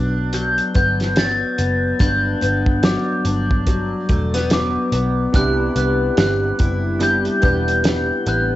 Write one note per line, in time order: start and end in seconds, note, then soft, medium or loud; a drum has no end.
0.00 0.59 B1 medium
0.00 0.32 F#3 medium
0.00 0.74 B3 medium
0.00 1.99 D4 medium
0.00 0.30 F#6 medium
0.33 1.15 F#3 medium
0.33 0.75 G6 loud
0.33 closed hi-hat medium
0.58 closed hi-hat soft
0.74 1.42 G1 medium
0.74 1.57 B3 medium
0.74 1.15 G6 medium
0.74 kick medium
0.74 closed hi-hat medium
1.00 snare soft
1.00 closed hi-hat soft
1.16 2.82 F#3 medium
1.16 2.04 A6 loud
1.16 snare medium
1.16 closed hi-hat medium
1.58 1.92 F#1 medium
1.58 2.41 B3 medium
1.58 closed hi-hat medium
1.99 2.34 G1 loud
1.99 5.34 G2 medium
1.99 3.24 D4 medium
1.99 2.87 G6 loud
1.99 kick loud
1.99 closed hi-hat medium
2.41 2.96 G1 medium
2.41 4.09 B3 medium
2.41 closed hi-hat medium
2.66 kick medium
2.83 3.66 F#3 medium
2.83 4.52 D6 medium
2.83 snare loud
2.83 closed hi-hat medium
3.25 3.92 G1 loud
3.25 5.34 D4 medium
3.25 closed hi-hat medium
3.51 kick medium
3.67 4.50 F#3 medium
3.67 kick medium
3.67 closed hi-hat medium
4.09 4.76 E1 medium
4.09 4.34 A3 medium
4.09 kick medium
4.09 closed hi-hat medium
4.34 4.91 B3 medium
4.34 snare soft
4.34 closed hi-hat soft
4.50 5.45 F#3 medium
4.50 5.38 D6 medium
4.50 snare medium
4.50 closed hi-hat medium
4.92 5.26 B1 medium
4.92 5.75 B3 medium
4.92 closed hi-hat medium
5.33 5.68 C2 medium
5.33 8.56 C3 medium
5.33 6.78 B3 medium
5.33 6.78 D4 medium
5.33 6.79 E4 medium
5.33 6.59 E4 medium
5.33 6.79 G4 medium
5.33 5.76 F#6 loud
5.33 kick loud
5.33 closed hi-hat medium
5.76 6.09 C2 medium
5.76 7.41 B3 medium
5.76 6.16 F#6 medium
5.76 closed hi-hat medium
6.17 6.51 G1 medium
6.17 6.99 G3 medium
6.17 6.99 F#6 medium
6.17 snare loud
6.17 closed hi-hat medium
6.59 7.27 F#1 medium
6.59 8.56 E4 medium
6.59 kick medium
6.59 closed hi-hat medium
7.00 7.83 G3 medium
7.00 7.37 B3 medium
7.00 7.38 D4 medium
7.00 7.38 E4 medium
7.00 7.38 G4 medium
7.00 7.44 G6 loud
7.00 closed hi-hat medium
7.25 closed hi-hat soft
7.42 8.10 E1 medium
7.42 8.53 B3 medium
7.42 8.25 B3 medium
7.42 8.53 D4 medium
7.42 8.53 E4 medium
7.42 8.54 G4 medium
7.42 7.83 G6 medium
7.42 kick medium
7.42 closed hi-hat medium
7.68 closed hi-hat soft
7.84 8.56 G3 medium
7.84 8.29 G6 medium
7.84 snare medium
7.84 closed hi-hat medium
8.26 8.56 A1 medium
8.26 8.56 B3 medium
8.26 8.56 F#6 medium
8.26 closed hi-hat medium